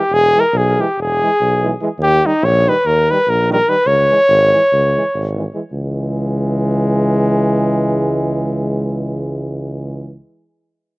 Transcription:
Already playing: G4
0.10 E1
0.14 G#4
0.35 E3 G#3
0.40 A#4
0.53 B1
0.57 G#4
0.78 E3 G#3 G4
0.98 E1 G#4
1.22 E3 G#3
1.41 B1
1.63 E3 G#3
1.81 E3 G#3
1.99 D#2
2.03 G4
2.24 D#3 G3 D#4
2.42 A#1 C#5
2.67 D#3 G3 B4
2.86 D#2 A#4
3.08 D#3 G3 B4
3.27 A#1 A#4
3.49 D#3 G3 A#4
3.68 D#3 G3 B4
3.86 C#2 C#5
4.10 E3 G#3
4.29 G#1
4.52 E3 G#3
4.73 C#2
4.96 E3 G#3
5.14 G#1
5.36 E3 G#3
5.54 E3 G#3
5.71 C#2 E3 G#3

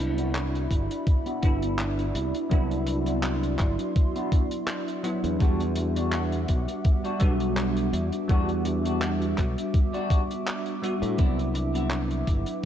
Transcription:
Already playing: C2 B3 D4 E4 F#4 D5 E5 B5
0.17 B3 D4 E4 F#4, closed hi-hat
0.35 clap, closed hi-hat
0.55 closed hi-hat
0.70 G1, muted clean electric guitar stroke, kick, closed hi-hat
0.91 closed hi-hat
1.07 kick, closed hi-hat
1.26 B3 D4 E4 F#4, closed hi-hat
1.42 G1 B3 D4 E4, kick, closed hi-hat
1.62 closed hi-hat
1.78 muted clean electric guitar stroke, clap, closed hi-hat
1.98 muted clean electric guitar stroke, closed hi-hat
2.15 C2, muted clean electric guitar stroke, closed hi-hat
2.34 closed hi-hat
2.49 C2 F#3 B3 D4 E4 F#4 C6, kick, closed hi-hat
2.71 closed hi-hat
2.87 muted clean electric guitar stroke, closed hi-hat
3.06 B3 D4 E4 F#4, closed hi-hat
3.23 clap, closed hi-hat
3.43 closed hi-hat
3.59 G1, muted clean electric guitar stroke, kick, clap, closed hi-hat
3.79 closed hi-hat
3.96 kick, closed hi-hat
4.15 B3 D4 E4 F#4, closed hi-hat
4.32 kick, closed hi-hat
4.51 closed hi-hat
4.68 muted clean electric guitar stroke, clap, closed hi-hat
4.87 muted clean electric guitar stroke, closed hi-hat
5.03 F#3 B3 D4 E4, muted clean electric guitar stroke, closed hi-hat
5.24 E2, closed hi-hat
5.39 E2 G3 B3 D4 F#4 F#5 D6, kick, closed hi-hat
5.60 closed hi-hat
5.76 muted clean electric guitar stroke, closed hi-hat
5.96 G3 D4 F#4, closed hi-hat
6.12 clap, closed hi-hat
6.32 closed hi-hat
6.48 B1, muted clean electric guitar stroke, kick, closed hi-hat
6.68 closed hi-hat
6.84 kick, closed hi-hat
7.04 G3 D4 F#4, closed hi-hat
7.19 B1 G3 B3 D4 F#4, kick, closed hi-hat
7.40 closed hi-hat
7.56 muted clean electric guitar stroke, clap, closed hi-hat
7.76 muted clean electric guitar stroke, closed hi-hat
7.93 E2, muted clean electric guitar stroke, closed hi-hat
8.12 closed hi-hat
8.28 E2 G3 B3 D4 F#4, kick, closed hi-hat
8.49 closed hi-hat
8.65 muted clean electric guitar stroke, closed hi-hat
8.85 G3 D4 F#4, closed hi-hat
9.02 clap, closed hi-hat
9.22 closed hi-hat
9.37 B1, muted clean electric guitar stroke, kick, clap, closed hi-hat
9.58 closed hi-hat
9.74 kick, closed hi-hat
9.93 G3 D4 F#4, closed hi-hat
10.10 kick, closed hi-hat
10.31 closed hi-hat
10.45 muted clean electric guitar stroke, clap, closed hi-hat
10.65 muted clean electric guitar stroke, closed hi-hat
10.82 G3 B3 D4 F#4, muted clean electric guitar stroke, closed hi-hat
11.02 A2, closed hi-hat
11.17 C2 F#3 B3 D4 E4 F#4 B4 F#5, kick, closed hi-hat
11.39 closed hi-hat
11.54 muted clean electric guitar stroke, closed hi-hat
11.74 B3 D4 E4 F#4, closed hi-hat
11.90 clap, closed hi-hat
12.11 closed hi-hat
12.27 G1, muted clean electric guitar stroke, kick, closed hi-hat
12.46 closed hi-hat

